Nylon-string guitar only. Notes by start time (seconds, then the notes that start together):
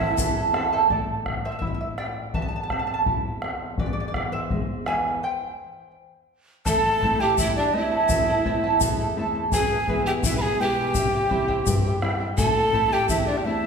Already playing: A2 C4 E4 A4
0.17 E2
0.53 C4 E4 A4
0.90 A2
1.26 C4
1.62 E4
1.99 C4
2.34 E2
2.71 C4
3.06 E4
3.43 C4
3.79 E2
4.16 E3
4.51 G#3
4.86 E3
6.67 A2
7.04 A3 C4 E4
7.39 E2
7.73 A3 C4 E4
8.09 E2
8.44 A3 C4 E4
8.81 E2
9.17 A3 C4 E4
9.52 E2
9.88 G#3 B3 E4
10.24 B2
10.59 G#3 B3 E4
10.95 C3
11.29 G3 C4 E4
11.67 G2
12.02 G3 C4 E4
12.37 A2
12.73 A3 C4 E4
13.09 E2
13.45 A3 C4 E4